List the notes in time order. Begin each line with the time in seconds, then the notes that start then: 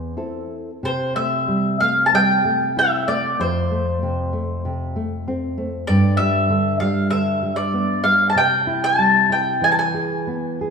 Already playing: E2 C5
0.17 C4 E4 A4
0.83 C3 C5
1.16 A3 E5
1.48 G3
1.80 A3 F5
2.06 A5
2.13 G3 G5
2.45 A3
2.77 E4 E5
3.08 A3 D5
3.40 F2 C5
3.71 A3
4.03 C3
4.33 A3
4.65 C3
4.96 A3
5.28 C4
5.58 A3
5.87 G2 D5
6.17 G3 E5
6.50 D3
6.80 G3 F5
7.11 D3 E5
7.43 G3
7.56 D5
7.74 B3
8.04 G3 F5
8.30 A5
8.35 C3 G5
8.67 E4
8.84 A5
8.98 G3
9.30 E4 G5
9.61 E3 G#5
9.72 A5
9.79 G#5
9.94 G#4
10.27 B3
10.61 G#4